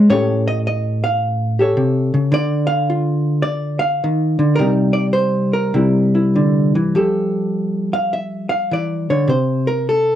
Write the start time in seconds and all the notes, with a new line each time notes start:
Already playing: F4
0.10 A2 C#4 G4 A4 C#5
0.48 D#5
0.67 D#5
1.04 F5
1.59 G4 A4 C#5
1.77 C3
2.14 C#3
2.32 D3 D5
2.67 F5
2.90 F4
3.42 D5
3.79 F5
4.04 D#3
4.39 D3
4.56 C3 A#4
4.60 G3 D#4
4.93 D5
5.13 C5
5.53 A#4
5.74 C3 G3 E4
6.15 E4
6.36 D3
6.75 E3
6.95 F3 G4 A4
7.93 F5
8.13 E5
8.49 F5
8.71 E3 D5
9.10 D3 C#5
9.27 C3 C5
9.67 A#4
9.89 A4